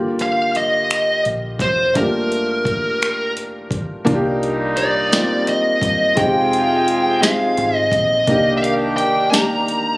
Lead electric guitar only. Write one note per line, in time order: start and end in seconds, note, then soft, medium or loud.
0.22 0.57 F5 medium
0.57 1.22 D#5 medium
1.61 1.96 C5 medium
1.97 3.33 A#4 medium
4.77 5.48 D5 medium
5.49 6.20 D#5 medium
6.17 7.22 G5 medium
7.22 7.76 F5 loud
7.76 7.92 D#5 loud
7.92 8.51 D#5 medium
8.57 8.63 E5 medium
8.62 8.71 F5 medium
8.97 9.30 G5 medium
9.30 9.97 A#5 loud